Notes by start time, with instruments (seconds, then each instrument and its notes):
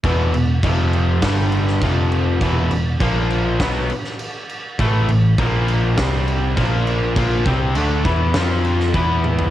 0.03 picked electric bass E1, overdriven electric guitar E2 B2 E3, kick, crash
0.34 picked electric bass E1, overdriven electric guitar E2 B2, crash
0.63 picked electric bass F1, overdriven electric guitar F2 C3 F3, kick, crash
0.93 crash
1.22 picked electric bass G1, overdriven electric guitar G2 D3 G3, kick, snare, crash
1.52 crash
1.68 snare
1.82 picked electric bass F1, overdriven electric guitar F2 C3 F3, kick, crash
2.12 crash
2.41 picked electric bass E1, overdriven electric guitar E2 B2 E3, kick, crash
2.71 picked electric bass E1, overdriven electric guitar E2 B2, crash
3.01 picked electric bass A#1, overdriven electric guitar A#2 F3 A#3, kick, crash
3.31 crash
3.60 picked electric bass B1, overdriven electric guitar B2 F#3 B3, kick, snare, crash
3.90 crash
4.04 snare
4.19 crash
4.49 crash
4.79 picked electric bass A1, overdriven electric guitar A2 E3 A3, kick, crash
5.08 picked electric bass A1, overdriven electric guitar A2 E3, crash
5.38 picked electric bass A#1, overdriven electric guitar A#2 F3 A#3, kick, crash
5.68 crash
5.97 picked electric bass C2, overdriven electric guitar C3 G3 C4, kick, snare, crash
6.28 crash
6.56 picked electric bass A#1, overdriven electric guitar A#2 F3 A#3, kick, crash
6.87 crash
7.16 picked electric bass A#1, overdriven electric guitar A#2 F3 A#3, kick, crash
7.45 picked electric bass C2, overdriven electric guitar C3 G3 C4, kick, crash
7.75 picked electric bass D2, overdriven electric guitar D3 A3 D4, crash
8.05 picked electric bass E2, overdriven electric guitar E3 B3 E4, kick, crash
8.34 picked electric bass F2, overdriven electric guitar F3 C4 F4, snare, crash
8.64 crash
8.80 snare
8.94 picked electric bass E2, overdriven electric guitar E3 B3 E4, kick, crash
9.24 high tom
9.39 floor tom